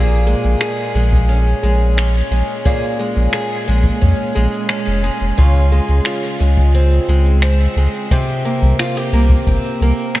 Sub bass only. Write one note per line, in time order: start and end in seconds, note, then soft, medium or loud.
0.00 0.35 A#1 medium
0.45 0.56 A#1 medium
0.95 1.54 A#1 loud
1.63 2.22 A#1 medium
2.31 2.43 A#1 medium
3.16 3.28 A#1 medium
3.68 3.91 A#1 loud
4.03 4.14 F2 medium
4.36 4.48 A#1 medium
4.87 5.10 F1 medium
5.21 5.33 F1 medium
5.39 5.80 C#2 loud
5.89 6.00 C#2 medium
6.41 7.00 C#2 loud
7.08 7.68 C#2 medium
7.76 7.88 C#2 medium
8.63 8.74 C2 medium
9.13 9.36 C2 loud
9.47 9.58 G1 medium
9.81 9.93 C2 medium